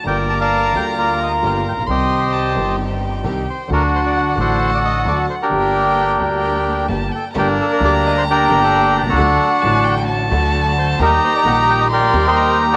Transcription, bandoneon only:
\new Staff \with { instrumentName = "Bandoneon" } { \time 4/4 \key g \minor \tempo 4 = 132 << { g''8 a''16 a''8. g''8 d''8 ees''8 f''8 g''16 f''16 | ees''2 r4. c''8 | bes'8 c''16 d''16 fis''16 d''16 c''8. d''16 ees''8 d''8 c''16 bes'16~ | bes'2. r8 a'8 |
g'8 a'16 bes'16 d''8 ees''16 c''16 bes'8. a'8. g'16 a'16~ | a'8. r2 r8. c''8 | bes'8 c''16 d''16 fis''8 g''16 ees''16 d''8. c''8. bes'16 d''16 | } \\ { <bes' d''>8. <d'' f''>4~ <d'' f''>16 <f' bes'>2 | <g' c''>2 r2 | <d' fis'>4. <fis' a'>2 r16 <d' g'>16~ | <d' g'>2. r4 |
<bes d'>2 <d' g'>8. d'4 <d' fis'>16~ | <d' fis'>4.~ <d' fis'>16 r2 r16 | <ees' g'>2 <g' bes'>8. <ees' g'>4 <fis' a'>16 | } >> }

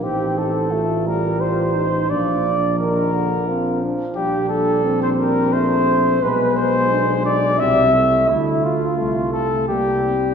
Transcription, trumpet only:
\new Staff \with { instrumentName = "Trumpet" } { \time 3/4 \key bes \major \tempo 4 = 87 g'8 a'4 bes'8 c''4 | d''4 bes'4. r8 | \key g \dorian g'8 a'8. c''16 bes'8 c''4 | b'8 c''4 d''8 e''4 |
e'8 f'4 a'8 g'4 | }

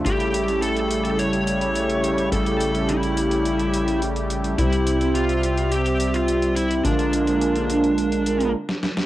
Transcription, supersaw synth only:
\new Staff \with { instrumentName = "Supersaw synth" } { \clef bass \time 4/4 \key a \phrygian \tempo 4 = 106 << { <g g'>1~ | <g g'>1~ | <g g'>1 | <f f'>2. r4 | } \\ { <cis a e'>1~ | <cis a e'>1 | <c e''>1 | <d aes bes>2. r4 | } >> }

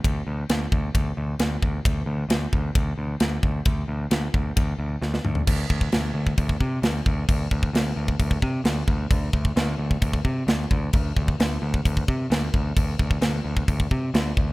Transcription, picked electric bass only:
\new Staff \with { instrumentName = "Picked electric bass" } { \clef bass \time 4/4 \key c \mixolydian \tempo 4 = 132 d,8 d,8 d,8 d,8 d,8 d,8 d,8 d,8 | d,8 d,8 d,8 d,8 d,8 d,8 d,8 d,8 | d,8 d,8 d,8 d,8 d,8 d,8 d,8 d,8 | d,8 d,8 d,8 d,8 d,8 c8 d,8 d,8 |
d,8 d,8 d,8 d,8 d,8 c8 d,8 d,8 | d,8 d,8 d,8 d,8 d,8 c8 d,8 d,8 | d,8 d,8 d,8 d,8 d,8 c8 d,8 d,8 | d,8 d,8 d,8 d,8 d,8 c8 d,8 d,8 | }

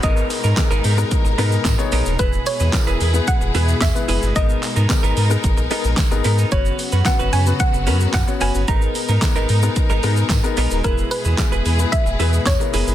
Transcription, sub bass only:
\new Staff \with { instrumentName = "Sub bass" } { \clef bass \time 4/4 \key gis \minor \tempo 4 = 111 gis,,8 r16 gis,16 r16 gis,,16 gis,8 r16 gis,,16 gis,8 gis,16 r16 ais,,16 dis,,16 | e,,8 r16 e,16 r16 e,,16 e,8 r16 e,,16 e,8 e,16 r16 fis,,16 g,,16 | gis,,8 r16 gis,16 r16 gis,,16 gis,8 gis,,16 ais,,16 r16 ais,,16 gis,,16 gis,,16 gis,8 | fis,,8 r16 fis,16 r16 fis,,16 fis,8 r16 fis,,16 fis,8 fis,16 r16 fis,,16 g,,16 |
gis,,8 r16 gis,16 r16 gis,,16 gis,8 r16 gis,,16 gis,8 gis,16 r16 ais,,16 dis,,16 | e,,8 r16 e,16 r16 e,,16 e,8 r16 e,,16 e,8 e,16 r16 fis,,16 g,,16 | }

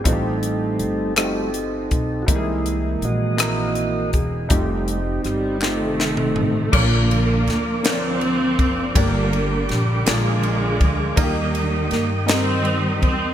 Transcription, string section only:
\new Staff \with { instrumentName = "String section" } { \clef bass \time 6/8 \key bes \major \tempo 4. = 54 << { r2. | r2. | r4 g8 a4. | bes4. c'4. |
bes4 g8 aes4. | bes4 bes8 c'4 c'8 | } \\ { r2. | r2. | r4. <c ees>4. | <d f>4. f4. |
<d g>4. <d f>4. | <ees g>4. <ees g>4. | } >> }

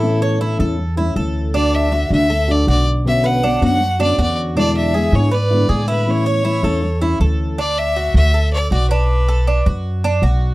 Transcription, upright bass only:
\new Staff \with { instrumentName = "Upright bass" } { \clef bass \time 4/4 \key b \minor \tempo 4 = 159 a,4. e,4. d,4~ | d,4. d,4. b,,4~ | b,,4. fis,4. e,4~ | e,4. gis,4. a,4~ |
a,4. e,4. d,4~ | d,4. d,4. b,,4~ | b,,4. fis,4. b,,4 | }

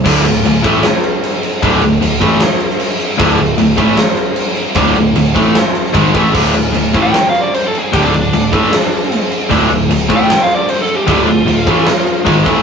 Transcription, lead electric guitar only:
\new Staff \with { instrumentName = "Lead electric guitar" } { \time 4/4 \key d \minor \tempo 4 = 152 r1 | r1 | r1 | r1 |
r4 \tuplet 3/2 { r4 g''8~ g''8 f''8 d''8 c''8 a'8 gis'8 } | \tuplet 3/2 { g'8 d'4~ } d'2~ d'8 r8 | r4 \tuplet 3/2 { r4 g''8~ g''8 f''8 d''8 c''8 a'8 g'8 } | \tuplet 3/2 { g'8 f'4~ } f'2~ f'8 r8 | }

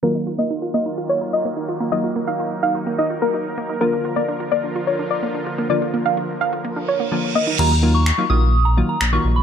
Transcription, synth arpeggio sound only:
\new Staff \with { instrumentName = "Synth arpeggio sound" } { \time 4/4 \key ees \minor \tempo 4 = 127 bes16 ees'16 f'16 bes16 ees'16 f'16 bes16 ees'16 f'16 r16 ees'16 r16 bes16 ees'16 f'16 bes16 | ees'16 f'16 bes16 ees'16 f'16 r16 ees'16 f'16 bes16 ees'16 f'16 bes16 ees'16 r16 bes16 ees'16 | bes16 d'16 f'16 bes16 d'16 f'16 bes16 d'16 f'16 r16 d'16 r16 bes16 d'16 f'16 bes16 | d'16 f'16 bes16 d'16 f'16 r16 d'16 f'16 bes16 d'16 f'16 bes16 d'16 r16 bes16 ees'16 |
r1 | }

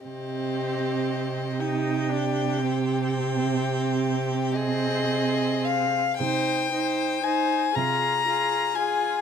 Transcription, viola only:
\new Staff \with { instrumentName = "Viola" } { \time 6/8 \key c \minor \tempo 4. = 39 c'4. ees'8 d'8 c'8~ | c'4. c'4. | ees'8 ees'8 ees'8 f'8 f'8 f'8 | }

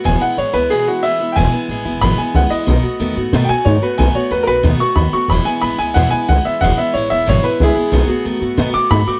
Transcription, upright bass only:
\new Staff \with { instrumentName = "Upright bass" } { \clef bass \time 4/4 \key e \major \tempo 4 = 183 e,,8 r8 a,,8 cis,8 r2 | e,,8 r8 a,,8 e,,8 gis,,8 r8 cis,8 r8 | b,,8 r8 e,8 gis,8 b,8 r8 gis,8 r8 | b,,8 r8 e,8 b,,8 dis,8 r8 dis,8 r8 |
e,,8 r8 a,,8 cis,8 e,8 r8 cis,8 r8 | e,,8 r8 a,,8 e,,8 gis,,8 r8 cis,8 r8 | b,,8 r8 e,8 gis,8 b,8 r8 gis,8 r8 | }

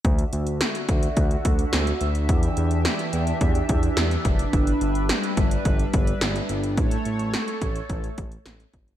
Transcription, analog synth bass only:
\new Staff \with { instrumentName = "Analog synth bass" } { \clef bass \time 4/4 \key d \major \tempo 4 = 107 d,8 d,8. r16 d,8 d,8 d,8 d,8 d,8 | e,8 e,8. r16 e,8 e,8 e,8 e,8 fis,,8 | g,,8 g,,8. r16 g,,8 g,,8 g,,8 g,,8 g,,8 | a,,8 a,,8. r16 a,,8 a,,8 a,,8 a,,8 g,,8 | }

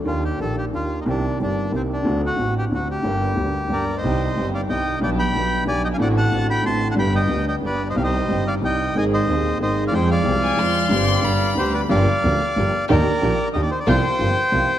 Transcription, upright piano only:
\new Staff \with { instrumentName = "Upright piano" } { \clef bass \time 3/4 \key g \minor \tempo 4 = 183 <ees, ees bes d' g'>4 <bes,, bes, ees bes d' g'>4 <ees, ees bes d' g'>4 | <c, c ees bes c' g'>4 <g,, g, ees bes c' g'>4 <c, c ees bes c' g'>4 | <d, d a c' fis'>4 <a,, a, d a c' fis'>4 <d, d a c' fis'>4 | <g,, g, d g bes g'>4 <d, d g bes g'>4 <g,, g, d g bes g'>4 |
\key c \minor <c, c ees g c' g'>4 <g,, g, ees g c' g'>4 <c, c ees g c' g'>4 | <b,, b, d g b g'>4 <b,, b, d g b g'>4 <b,, b, d g b g'>4 | <a,, a, d a c' fis'>4 <a,, a, d a c' fis'>4 <a,, a, d a c' fis'>4 | <g,, g, d g b g'>4 <d, d g b g'>4 <g,, g, d g b g'>4 |
<c, c ees g c' g'>4 <g,, g, ees g c' g'>4 <c, c ees g c' g'>4 | <aes,, aes, ees bes c' aes'>4 <ees,, ees, ees bes c' aes'>4 <aes,, aes, ees bes c' aes'>4 | <f, f aes c' aes'>4 <c, c f aes c' aes'>4 <f, f aes c' aes'>4 | <g,, g, d g c' g'>4 <g,, g, d g b>4 <d, d g b g'>4 |
\key g \minor <g,, g, f bes d' g'>8 r8 <d, d f bes d' g'>8 r8 <g,, g, f bes d' g'>8 r8 | <ees, ees bes d' g'>8 r8 <bes,, bes, ees bes d' g'>8 r8 <ees, ees bes d' g'>8 r8 | <c, c f bes c' g'>8 r8 <g,, g, f bes c' g'>8 r8 <c, c f bes c' g'>8 r8 | }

